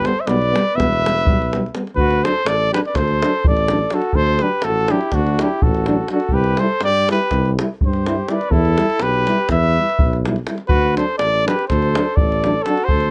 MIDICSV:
0, 0, Header, 1, 7, 480
1, 0, Start_track
1, 0, Tempo, 485437
1, 1939, Time_signature, 9, 3, 24, 8
1, 12959, End_track
2, 0, Start_track
2, 0, Title_t, "Trumpet"
2, 0, Program_c, 0, 56
2, 59, Note_on_c, 0, 72, 92
2, 200, Note_on_c, 0, 76, 54
2, 215, Note_off_c, 0, 72, 0
2, 267, Note_on_c, 0, 74, 112
2, 282, Note_off_c, 0, 76, 0
2, 749, Note_on_c, 0, 76, 106
2, 763, Note_off_c, 0, 74, 0
2, 1712, Note_off_c, 0, 76, 0
2, 1935, Note_on_c, 0, 71, 99
2, 2213, Note_on_c, 0, 72, 100
2, 2228, Note_off_c, 0, 71, 0
2, 2447, Note_on_c, 0, 74, 103
2, 2462, Note_off_c, 0, 72, 0
2, 2700, Note_off_c, 0, 74, 0
2, 2706, Note_on_c, 0, 71, 81
2, 2775, Note_off_c, 0, 71, 0
2, 2831, Note_on_c, 0, 74, 80
2, 2931, Note_on_c, 0, 72, 104
2, 2946, Note_off_c, 0, 74, 0
2, 3416, Note_off_c, 0, 72, 0
2, 3439, Note_on_c, 0, 74, 93
2, 3896, Note_on_c, 0, 69, 83
2, 3911, Note_off_c, 0, 74, 0
2, 4111, Note_on_c, 0, 72, 103
2, 4125, Note_off_c, 0, 69, 0
2, 4370, Note_on_c, 0, 71, 86
2, 4384, Note_off_c, 0, 72, 0
2, 4588, Note_on_c, 0, 69, 96
2, 4602, Note_off_c, 0, 71, 0
2, 4855, Note_on_c, 0, 67, 78
2, 4869, Note_off_c, 0, 69, 0
2, 5086, Note_on_c, 0, 66, 82
2, 5101, Note_off_c, 0, 67, 0
2, 5360, Note_on_c, 0, 67, 78
2, 5375, Note_off_c, 0, 66, 0
2, 5566, Note_on_c, 0, 69, 77
2, 5580, Note_off_c, 0, 67, 0
2, 6031, Note_off_c, 0, 69, 0
2, 6046, Note_on_c, 0, 69, 74
2, 6271, Note_on_c, 0, 71, 92
2, 6286, Note_off_c, 0, 69, 0
2, 6521, Note_on_c, 0, 72, 89
2, 6536, Note_off_c, 0, 71, 0
2, 6743, Note_off_c, 0, 72, 0
2, 6762, Note_on_c, 0, 74, 112
2, 7001, Note_off_c, 0, 74, 0
2, 7033, Note_on_c, 0, 71, 87
2, 7451, Note_off_c, 0, 71, 0
2, 7772, Note_on_c, 0, 72, 79
2, 8204, Note_on_c, 0, 74, 78
2, 8219, Note_off_c, 0, 72, 0
2, 8407, Note_on_c, 0, 69, 100
2, 8422, Note_off_c, 0, 74, 0
2, 8922, Note_on_c, 0, 71, 112
2, 8937, Note_off_c, 0, 69, 0
2, 9403, Note_off_c, 0, 71, 0
2, 9409, Note_on_c, 0, 76, 99
2, 10106, Note_off_c, 0, 76, 0
2, 10562, Note_on_c, 0, 71, 102
2, 10818, Note_off_c, 0, 71, 0
2, 10850, Note_on_c, 0, 72, 90
2, 11051, Note_off_c, 0, 72, 0
2, 11057, Note_on_c, 0, 74, 113
2, 11313, Note_off_c, 0, 74, 0
2, 11345, Note_on_c, 0, 71, 92
2, 11542, Note_off_c, 0, 71, 0
2, 11548, Note_on_c, 0, 72, 89
2, 12019, Note_on_c, 0, 74, 92
2, 12034, Note_off_c, 0, 72, 0
2, 12489, Note_on_c, 0, 69, 91
2, 12504, Note_off_c, 0, 74, 0
2, 12698, Note_on_c, 0, 72, 100
2, 12713, Note_off_c, 0, 69, 0
2, 12959, Note_off_c, 0, 72, 0
2, 12959, End_track
3, 0, Start_track
3, 0, Title_t, "Flugelhorn"
3, 0, Program_c, 1, 56
3, 45, Note_on_c, 1, 69, 61
3, 199, Note_on_c, 1, 72, 63
3, 214, Note_off_c, 1, 69, 0
3, 264, Note_on_c, 1, 71, 71
3, 279, Note_off_c, 1, 72, 0
3, 780, Note_off_c, 1, 71, 0
3, 780, Note_on_c, 1, 71, 75
3, 1728, Note_off_c, 1, 71, 0
3, 1943, Note_on_c, 1, 66, 91
3, 2215, Note_on_c, 1, 69, 75
3, 2230, Note_off_c, 1, 66, 0
3, 2418, Note_off_c, 1, 69, 0
3, 2418, Note_on_c, 1, 69, 90
3, 2684, Note_off_c, 1, 69, 0
3, 2690, Note_on_c, 1, 67, 76
3, 2763, Note_off_c, 1, 67, 0
3, 2851, Note_on_c, 1, 71, 55
3, 2944, Note_on_c, 1, 69, 87
3, 2959, Note_off_c, 1, 71, 0
3, 3417, Note_off_c, 1, 69, 0
3, 3423, Note_on_c, 1, 69, 67
3, 3890, Note_on_c, 1, 66, 82
3, 3905, Note_off_c, 1, 69, 0
3, 4097, Note_on_c, 1, 69, 82
3, 4112, Note_off_c, 1, 66, 0
3, 4372, Note_on_c, 1, 67, 68
3, 4387, Note_off_c, 1, 69, 0
3, 4595, Note_on_c, 1, 66, 63
3, 4609, Note_off_c, 1, 67, 0
3, 4832, Note_on_c, 1, 64, 70
3, 4847, Note_off_c, 1, 66, 0
3, 5068, Note_on_c, 1, 62, 74
3, 5083, Note_off_c, 1, 64, 0
3, 5338, Note_on_c, 1, 64, 61
3, 5352, Note_off_c, 1, 62, 0
3, 5555, Note_on_c, 1, 66, 68
3, 5570, Note_off_c, 1, 64, 0
3, 6025, Note_off_c, 1, 66, 0
3, 6044, Note_on_c, 1, 66, 78
3, 6252, Note_on_c, 1, 67, 75
3, 6267, Note_off_c, 1, 66, 0
3, 6523, Note_on_c, 1, 69, 72
3, 6538, Note_off_c, 1, 67, 0
3, 6744, Note_off_c, 1, 69, 0
3, 6755, Note_on_c, 1, 67, 77
3, 6998, Note_off_c, 1, 67, 0
3, 7030, Note_on_c, 1, 67, 64
3, 7449, Note_off_c, 1, 67, 0
3, 7758, Note_on_c, 1, 67, 59
3, 8237, Note_on_c, 1, 71, 75
3, 8252, Note_off_c, 1, 67, 0
3, 8426, Note_on_c, 1, 64, 76
3, 8440, Note_off_c, 1, 71, 0
3, 8918, Note_on_c, 1, 67, 74
3, 8933, Note_off_c, 1, 64, 0
3, 9399, Note_off_c, 1, 67, 0
3, 9405, Note_on_c, 1, 71, 72
3, 10103, Note_off_c, 1, 71, 0
3, 10572, Note_on_c, 1, 66, 107
3, 10824, Note_off_c, 1, 66, 0
3, 10846, Note_on_c, 1, 69, 73
3, 11054, Note_off_c, 1, 69, 0
3, 11080, Note_on_c, 1, 69, 70
3, 11325, Note_off_c, 1, 69, 0
3, 11336, Note_on_c, 1, 67, 79
3, 11547, Note_off_c, 1, 67, 0
3, 11558, Note_on_c, 1, 69, 81
3, 12050, Note_off_c, 1, 69, 0
3, 12050, Note_on_c, 1, 69, 75
3, 12534, Note_on_c, 1, 66, 89
3, 12548, Note_off_c, 1, 69, 0
3, 12743, Note_on_c, 1, 69, 106
3, 12758, Note_off_c, 1, 66, 0
3, 12959, Note_off_c, 1, 69, 0
3, 12959, End_track
4, 0, Start_track
4, 0, Title_t, "French horn"
4, 0, Program_c, 2, 60
4, 41, Note_on_c, 2, 59, 54
4, 133, Note_off_c, 2, 59, 0
4, 267, Note_on_c, 2, 59, 59
4, 376, Note_off_c, 2, 59, 0
4, 503, Note_on_c, 2, 59, 56
4, 601, Note_off_c, 2, 59, 0
4, 741, Note_on_c, 2, 59, 69
4, 853, Note_off_c, 2, 59, 0
4, 1007, Note_on_c, 2, 59, 45
4, 1102, Note_off_c, 2, 59, 0
4, 1241, Note_on_c, 2, 59, 42
4, 1343, Note_off_c, 2, 59, 0
4, 1500, Note_on_c, 2, 59, 51
4, 1587, Note_off_c, 2, 59, 0
4, 1713, Note_on_c, 2, 59, 43
4, 1802, Note_off_c, 2, 59, 0
4, 2219, Note_on_c, 2, 62, 46
4, 2306, Note_off_c, 2, 62, 0
4, 2701, Note_on_c, 2, 62, 60
4, 2790, Note_off_c, 2, 62, 0
4, 3200, Note_on_c, 2, 62, 53
4, 3287, Note_off_c, 2, 62, 0
4, 3661, Note_on_c, 2, 62, 63
4, 3747, Note_off_c, 2, 62, 0
4, 3870, Note_on_c, 2, 62, 58
4, 3957, Note_off_c, 2, 62, 0
4, 4341, Note_on_c, 2, 62, 55
4, 4434, Note_off_c, 2, 62, 0
4, 4833, Note_on_c, 2, 62, 65
4, 4926, Note_off_c, 2, 62, 0
4, 5340, Note_on_c, 2, 62, 63
4, 5430, Note_off_c, 2, 62, 0
4, 5808, Note_on_c, 2, 62, 74
4, 5896, Note_off_c, 2, 62, 0
4, 6042, Note_on_c, 2, 62, 69
4, 6127, Note_off_c, 2, 62, 0
4, 6516, Note_on_c, 2, 64, 51
4, 6606, Note_off_c, 2, 64, 0
4, 7020, Note_on_c, 2, 64, 68
4, 7107, Note_off_c, 2, 64, 0
4, 7516, Note_on_c, 2, 64, 62
4, 7603, Note_off_c, 2, 64, 0
4, 7989, Note_on_c, 2, 64, 71
4, 8073, Note_off_c, 2, 64, 0
4, 8199, Note_on_c, 2, 64, 68
4, 8284, Note_off_c, 2, 64, 0
4, 8690, Note_on_c, 2, 64, 55
4, 8777, Note_off_c, 2, 64, 0
4, 9174, Note_on_c, 2, 64, 57
4, 9263, Note_off_c, 2, 64, 0
4, 9669, Note_on_c, 2, 64, 43
4, 9758, Note_off_c, 2, 64, 0
4, 10158, Note_on_c, 2, 64, 56
4, 10241, Note_off_c, 2, 64, 0
4, 10354, Note_on_c, 2, 64, 41
4, 10442, Note_off_c, 2, 64, 0
4, 10840, Note_on_c, 2, 62, 57
4, 10931, Note_off_c, 2, 62, 0
4, 11323, Note_on_c, 2, 62, 48
4, 11416, Note_off_c, 2, 62, 0
4, 11828, Note_on_c, 2, 62, 58
4, 11919, Note_off_c, 2, 62, 0
4, 12315, Note_on_c, 2, 62, 60
4, 12400, Note_off_c, 2, 62, 0
4, 12531, Note_on_c, 2, 62, 62
4, 12617, Note_off_c, 2, 62, 0
4, 12959, End_track
5, 0, Start_track
5, 0, Title_t, "Euphonium"
5, 0, Program_c, 3, 58
5, 32, Note_on_c, 3, 55, 56
5, 126, Note_off_c, 3, 55, 0
5, 264, Note_on_c, 3, 55, 54
5, 374, Note_off_c, 3, 55, 0
5, 537, Note_on_c, 3, 55, 71
5, 628, Note_off_c, 3, 55, 0
5, 765, Note_on_c, 3, 55, 53
5, 873, Note_off_c, 3, 55, 0
5, 1021, Note_on_c, 3, 55, 44
5, 1113, Note_off_c, 3, 55, 0
5, 1252, Note_on_c, 3, 55, 58
5, 1352, Note_off_c, 3, 55, 0
5, 1528, Note_on_c, 3, 55, 55
5, 1611, Note_off_c, 3, 55, 0
5, 1733, Note_on_c, 3, 55, 42
5, 1817, Note_off_c, 3, 55, 0
5, 2227, Note_on_c, 3, 54, 53
5, 2312, Note_off_c, 3, 54, 0
5, 2686, Note_on_c, 3, 54, 61
5, 2778, Note_off_c, 3, 54, 0
5, 3208, Note_on_c, 3, 54, 48
5, 3293, Note_off_c, 3, 54, 0
5, 3657, Note_on_c, 3, 54, 54
5, 3744, Note_off_c, 3, 54, 0
5, 3875, Note_on_c, 3, 54, 54
5, 3961, Note_off_c, 3, 54, 0
5, 4366, Note_on_c, 3, 54, 61
5, 4454, Note_off_c, 3, 54, 0
5, 4857, Note_on_c, 3, 54, 66
5, 4945, Note_off_c, 3, 54, 0
5, 5356, Note_on_c, 3, 54, 49
5, 5443, Note_off_c, 3, 54, 0
5, 5825, Note_on_c, 3, 54, 66
5, 5910, Note_off_c, 3, 54, 0
5, 6036, Note_on_c, 3, 54, 47
5, 6122, Note_off_c, 3, 54, 0
5, 6515, Note_on_c, 3, 55, 68
5, 6605, Note_off_c, 3, 55, 0
5, 7012, Note_on_c, 3, 55, 70
5, 7101, Note_off_c, 3, 55, 0
5, 7488, Note_on_c, 3, 55, 64
5, 7581, Note_off_c, 3, 55, 0
5, 7966, Note_on_c, 3, 55, 60
5, 8054, Note_off_c, 3, 55, 0
5, 8196, Note_on_c, 3, 55, 45
5, 8282, Note_off_c, 3, 55, 0
5, 8672, Note_on_c, 3, 55, 54
5, 8763, Note_off_c, 3, 55, 0
5, 9171, Note_on_c, 3, 55, 62
5, 9261, Note_off_c, 3, 55, 0
5, 9662, Note_on_c, 3, 55, 44
5, 9752, Note_off_c, 3, 55, 0
5, 10144, Note_on_c, 3, 55, 50
5, 10230, Note_off_c, 3, 55, 0
5, 10367, Note_on_c, 3, 55, 41
5, 10452, Note_off_c, 3, 55, 0
5, 10848, Note_on_c, 3, 54, 55
5, 10937, Note_off_c, 3, 54, 0
5, 11323, Note_on_c, 3, 54, 68
5, 11416, Note_off_c, 3, 54, 0
5, 11833, Note_on_c, 3, 54, 56
5, 11923, Note_off_c, 3, 54, 0
5, 12295, Note_on_c, 3, 54, 63
5, 12385, Note_off_c, 3, 54, 0
5, 12526, Note_on_c, 3, 54, 50
5, 12613, Note_off_c, 3, 54, 0
5, 12959, End_track
6, 0, Start_track
6, 0, Title_t, "Tuba"
6, 0, Program_c, 4, 58
6, 270, Note_on_c, 4, 35, 89
6, 542, Note_off_c, 4, 35, 0
6, 751, Note_on_c, 4, 28, 85
6, 1249, Note_on_c, 4, 35, 76
6, 1264, Note_off_c, 4, 28, 0
6, 1626, Note_off_c, 4, 35, 0
6, 1934, Note_on_c, 4, 38, 98
6, 2205, Note_off_c, 4, 38, 0
6, 2427, Note_on_c, 4, 33, 75
6, 2697, Note_off_c, 4, 33, 0
6, 2913, Note_on_c, 4, 38, 88
6, 3185, Note_off_c, 4, 38, 0
6, 3418, Note_on_c, 4, 33, 86
6, 3791, Note_off_c, 4, 33, 0
6, 4097, Note_on_c, 4, 38, 102
6, 4366, Note_off_c, 4, 38, 0
6, 4587, Note_on_c, 4, 33, 75
6, 4856, Note_off_c, 4, 33, 0
6, 5070, Note_on_c, 4, 38, 103
6, 5341, Note_off_c, 4, 38, 0
6, 5572, Note_on_c, 4, 33, 89
6, 5946, Note_off_c, 4, 33, 0
6, 6249, Note_on_c, 4, 36, 104
6, 6520, Note_off_c, 4, 36, 0
6, 6739, Note_on_c, 4, 43, 68
6, 7010, Note_off_c, 4, 43, 0
6, 7239, Note_on_c, 4, 36, 105
6, 7509, Note_off_c, 4, 36, 0
6, 7734, Note_on_c, 4, 43, 82
6, 8109, Note_off_c, 4, 43, 0
6, 8413, Note_on_c, 4, 40, 112
6, 8683, Note_off_c, 4, 40, 0
6, 8906, Note_on_c, 4, 35, 85
6, 9177, Note_off_c, 4, 35, 0
6, 9392, Note_on_c, 4, 40, 102
6, 9665, Note_off_c, 4, 40, 0
6, 9893, Note_on_c, 4, 35, 86
6, 10269, Note_off_c, 4, 35, 0
6, 10579, Note_on_c, 4, 38, 86
6, 10850, Note_off_c, 4, 38, 0
6, 11067, Note_on_c, 4, 33, 67
6, 11339, Note_off_c, 4, 33, 0
6, 11572, Note_on_c, 4, 38, 102
6, 11842, Note_off_c, 4, 38, 0
6, 12059, Note_on_c, 4, 33, 92
6, 12436, Note_off_c, 4, 33, 0
6, 12749, Note_on_c, 4, 38, 84
6, 12959, Note_off_c, 4, 38, 0
6, 12959, End_track
7, 0, Start_track
7, 0, Title_t, "Davul"
7, 48, Note_on_c, 9, 37, 58
7, 147, Note_off_c, 9, 37, 0
7, 271, Note_on_c, 9, 37, 69
7, 370, Note_off_c, 9, 37, 0
7, 411, Note_on_c, 9, 37, 22
7, 510, Note_off_c, 9, 37, 0
7, 550, Note_on_c, 9, 37, 75
7, 649, Note_off_c, 9, 37, 0
7, 789, Note_on_c, 9, 37, 66
7, 789, Note_on_c, 9, 43, 60
7, 888, Note_off_c, 9, 37, 0
7, 888, Note_off_c, 9, 43, 0
7, 919, Note_on_c, 9, 37, 27
7, 1018, Note_off_c, 9, 37, 0
7, 1051, Note_on_c, 9, 37, 78
7, 1150, Note_off_c, 9, 37, 0
7, 1167, Note_on_c, 9, 37, 29
7, 1252, Note_on_c, 9, 43, 104
7, 1266, Note_off_c, 9, 37, 0
7, 1351, Note_off_c, 9, 43, 0
7, 1403, Note_on_c, 9, 37, 24
7, 1501, Note_off_c, 9, 37, 0
7, 1513, Note_on_c, 9, 37, 60
7, 1612, Note_off_c, 9, 37, 0
7, 1645, Note_on_c, 9, 37, 22
7, 1726, Note_off_c, 9, 37, 0
7, 1726, Note_on_c, 9, 37, 61
7, 1825, Note_off_c, 9, 37, 0
7, 1852, Note_on_c, 9, 37, 26
7, 1951, Note_off_c, 9, 37, 0
7, 1952, Note_on_c, 9, 43, 70
7, 2051, Note_off_c, 9, 43, 0
7, 2082, Note_on_c, 9, 37, 31
7, 2181, Note_off_c, 9, 37, 0
7, 2224, Note_on_c, 9, 37, 66
7, 2323, Note_off_c, 9, 37, 0
7, 2437, Note_on_c, 9, 37, 82
7, 2535, Note_off_c, 9, 37, 0
7, 2713, Note_on_c, 9, 37, 72
7, 2812, Note_off_c, 9, 37, 0
7, 2822, Note_on_c, 9, 37, 26
7, 2918, Note_off_c, 9, 37, 0
7, 2918, Note_on_c, 9, 37, 66
7, 2918, Note_on_c, 9, 43, 59
7, 3017, Note_off_c, 9, 37, 0
7, 3017, Note_off_c, 9, 43, 0
7, 3043, Note_on_c, 9, 37, 22
7, 3142, Note_off_c, 9, 37, 0
7, 3188, Note_on_c, 9, 37, 79
7, 3287, Note_off_c, 9, 37, 0
7, 3406, Note_on_c, 9, 43, 107
7, 3505, Note_off_c, 9, 43, 0
7, 3526, Note_on_c, 9, 37, 30
7, 3625, Note_off_c, 9, 37, 0
7, 3642, Note_on_c, 9, 37, 67
7, 3741, Note_off_c, 9, 37, 0
7, 3861, Note_on_c, 9, 37, 60
7, 3960, Note_off_c, 9, 37, 0
7, 3972, Note_on_c, 9, 37, 28
7, 4070, Note_off_c, 9, 37, 0
7, 4082, Note_on_c, 9, 43, 75
7, 4181, Note_off_c, 9, 43, 0
7, 4218, Note_on_c, 9, 37, 29
7, 4317, Note_off_c, 9, 37, 0
7, 4340, Note_on_c, 9, 37, 45
7, 4439, Note_off_c, 9, 37, 0
7, 4566, Note_on_c, 9, 37, 68
7, 4665, Note_off_c, 9, 37, 0
7, 4828, Note_on_c, 9, 37, 61
7, 4926, Note_off_c, 9, 37, 0
7, 4952, Note_on_c, 9, 37, 21
7, 5051, Note_off_c, 9, 37, 0
7, 5059, Note_on_c, 9, 37, 55
7, 5059, Note_on_c, 9, 43, 54
7, 5158, Note_off_c, 9, 37, 0
7, 5158, Note_off_c, 9, 43, 0
7, 5208, Note_on_c, 9, 37, 24
7, 5307, Note_off_c, 9, 37, 0
7, 5329, Note_on_c, 9, 37, 72
7, 5428, Note_off_c, 9, 37, 0
7, 5558, Note_on_c, 9, 43, 96
7, 5657, Note_off_c, 9, 43, 0
7, 5681, Note_on_c, 9, 37, 30
7, 5780, Note_off_c, 9, 37, 0
7, 5795, Note_on_c, 9, 37, 56
7, 5894, Note_off_c, 9, 37, 0
7, 6015, Note_on_c, 9, 37, 51
7, 6114, Note_off_c, 9, 37, 0
7, 6130, Note_on_c, 9, 37, 29
7, 6218, Note_on_c, 9, 43, 61
7, 6228, Note_off_c, 9, 37, 0
7, 6317, Note_off_c, 9, 43, 0
7, 6367, Note_on_c, 9, 37, 29
7, 6466, Note_off_c, 9, 37, 0
7, 6498, Note_on_c, 9, 37, 56
7, 6597, Note_off_c, 9, 37, 0
7, 6729, Note_on_c, 9, 37, 73
7, 6828, Note_off_c, 9, 37, 0
7, 7008, Note_on_c, 9, 37, 61
7, 7107, Note_off_c, 9, 37, 0
7, 7124, Note_on_c, 9, 37, 21
7, 7223, Note_off_c, 9, 37, 0
7, 7226, Note_on_c, 9, 37, 55
7, 7226, Note_on_c, 9, 43, 50
7, 7325, Note_off_c, 9, 37, 0
7, 7325, Note_off_c, 9, 43, 0
7, 7372, Note_on_c, 9, 37, 20
7, 7471, Note_off_c, 9, 37, 0
7, 7502, Note_on_c, 9, 37, 76
7, 7601, Note_off_c, 9, 37, 0
7, 7721, Note_on_c, 9, 43, 84
7, 7820, Note_off_c, 9, 43, 0
7, 7845, Note_on_c, 9, 37, 32
7, 7944, Note_off_c, 9, 37, 0
7, 7974, Note_on_c, 9, 37, 63
7, 8073, Note_off_c, 9, 37, 0
7, 8192, Note_on_c, 9, 37, 55
7, 8291, Note_off_c, 9, 37, 0
7, 8316, Note_on_c, 9, 37, 28
7, 8415, Note_off_c, 9, 37, 0
7, 8417, Note_on_c, 9, 43, 79
7, 8516, Note_off_c, 9, 43, 0
7, 8554, Note_on_c, 9, 37, 25
7, 8653, Note_off_c, 9, 37, 0
7, 8678, Note_on_c, 9, 37, 60
7, 8777, Note_off_c, 9, 37, 0
7, 8799, Note_on_c, 9, 37, 29
7, 8895, Note_off_c, 9, 37, 0
7, 8895, Note_on_c, 9, 37, 65
7, 8993, Note_off_c, 9, 37, 0
7, 9034, Note_on_c, 9, 37, 20
7, 9133, Note_off_c, 9, 37, 0
7, 9165, Note_on_c, 9, 37, 56
7, 9264, Note_off_c, 9, 37, 0
7, 9277, Note_on_c, 9, 37, 22
7, 9376, Note_off_c, 9, 37, 0
7, 9381, Note_on_c, 9, 37, 60
7, 9381, Note_on_c, 9, 43, 58
7, 9480, Note_off_c, 9, 37, 0
7, 9480, Note_off_c, 9, 43, 0
7, 9526, Note_on_c, 9, 37, 21
7, 9625, Note_off_c, 9, 37, 0
7, 9784, Note_on_c, 9, 37, 25
7, 9876, Note_on_c, 9, 43, 95
7, 9883, Note_off_c, 9, 37, 0
7, 9974, Note_off_c, 9, 43, 0
7, 10019, Note_on_c, 9, 37, 24
7, 10118, Note_off_c, 9, 37, 0
7, 10140, Note_on_c, 9, 37, 63
7, 10239, Note_off_c, 9, 37, 0
7, 10244, Note_on_c, 9, 37, 24
7, 10343, Note_off_c, 9, 37, 0
7, 10349, Note_on_c, 9, 37, 60
7, 10448, Note_off_c, 9, 37, 0
7, 10459, Note_on_c, 9, 37, 30
7, 10558, Note_off_c, 9, 37, 0
7, 10572, Note_on_c, 9, 43, 88
7, 10671, Note_off_c, 9, 43, 0
7, 10848, Note_on_c, 9, 37, 58
7, 10947, Note_off_c, 9, 37, 0
7, 11067, Note_on_c, 9, 37, 68
7, 11166, Note_off_c, 9, 37, 0
7, 11350, Note_on_c, 9, 37, 75
7, 11449, Note_off_c, 9, 37, 0
7, 11459, Note_on_c, 9, 37, 30
7, 11558, Note_off_c, 9, 37, 0
7, 11566, Note_on_c, 9, 37, 54
7, 11566, Note_on_c, 9, 43, 63
7, 11665, Note_off_c, 9, 37, 0
7, 11665, Note_off_c, 9, 43, 0
7, 11691, Note_on_c, 9, 37, 27
7, 11790, Note_off_c, 9, 37, 0
7, 11820, Note_on_c, 9, 37, 82
7, 11919, Note_off_c, 9, 37, 0
7, 12035, Note_on_c, 9, 43, 105
7, 12133, Note_off_c, 9, 43, 0
7, 12183, Note_on_c, 9, 37, 27
7, 12282, Note_off_c, 9, 37, 0
7, 12298, Note_on_c, 9, 37, 60
7, 12397, Note_off_c, 9, 37, 0
7, 12516, Note_on_c, 9, 37, 58
7, 12615, Note_off_c, 9, 37, 0
7, 12631, Note_on_c, 9, 37, 35
7, 12729, Note_off_c, 9, 37, 0
7, 12741, Note_on_c, 9, 43, 76
7, 12840, Note_off_c, 9, 43, 0
7, 12859, Note_on_c, 9, 37, 31
7, 12958, Note_off_c, 9, 37, 0
7, 12959, End_track
0, 0, End_of_file